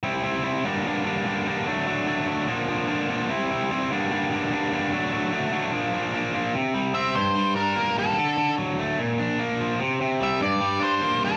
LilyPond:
<<
  \new Staff \with { instrumentName = "Lead electric guitar" } { \time 4/4 \key g \minor \tempo 4 = 148 r1 | r1 | r1 | r1 |
r4 e''8 c''4 bes'4 a'8~ | a'4 r2. | r4 e''8 d''4 c''4 a'8 | }
  \new Staff \with { instrumentName = "Overdriven electric guitar" } { \clef bass \time 4/4 \key g \minor <c g c' e'>8 <c g c' e'>8 <c g c' e'>8 <g, d g bes d'>8 <g, d g bes d'>8 <g, d g bes d'>8 <g, d g bes d'>8 <g, d g bes d'>8 | <d fis a d'>8 <d fis a d'>8 <d fis a d'>8 <d fis a d'>8 <bes, d f bes d'>8 <bes, d f bes d'>8 <bes, d f bes d'>8 <bes, d f bes d'>8 | <c g c' e'>8 <c g c' e'>8 <c g c' e'>8 <g, d g bes d'>8 <g, d g bes d'>8 <g, d g bes d'>8 <g, d g bes d'>8 <g, d g bes d'>8 | <d fis a d'>8 <d fis a d'>8 <d fis a d'>8 <d fis a d'>8 <bes, f bes d'>8 <bes, f bes d'>8 <bes, f bes d'>8 <bes, f bes d'>8 |
c8 g8 c'8 g,8 g8 d'8 bes8 g8 | d8 d8 fis8 a8 bes,8 d'8 bes8 f8 | c8 c8 g8 g,8 g8 d'8 bes8 g8 | }
>>